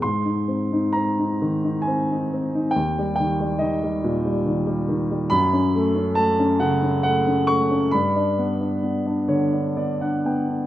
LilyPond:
<<
  \new Staff \with { instrumentName = "Grand piano" } { \time 3/4 \key gis \minor \tempo 4 = 68 << { bis''4 ais''4 gis''4 | g''8 g''8 dis''4 r4 | b''4 a''8 fis''8 fis''8 cis'''8 | b''2~ b''8 r8 | } \\ { r2. | r2. | r2. | r4. cis''8 d''16 fis''16 g''8 | } >> }
  \new Staff \with { instrumentName = "Grand piano" } { \time 3/4 \key gis \minor gis,16 dis'16 bis16 dis'16 bis16 dis'16 dis16 dis'16 bis16 dis'16 bis16 dis'16 | dis,16 g16 dis16 g16 dis16 g16 ais,16 g16 dis16 g16 dis16 g16 | fis,16 cis'16 a16 cis'16 a16 cis'16 cis16 cis'16 a16 cis'16 a16 cis'16 | g,16 d'16 b16 d'16 b16 d'16 d16 d'16 b16 d'16 b16 d'16 | }
>>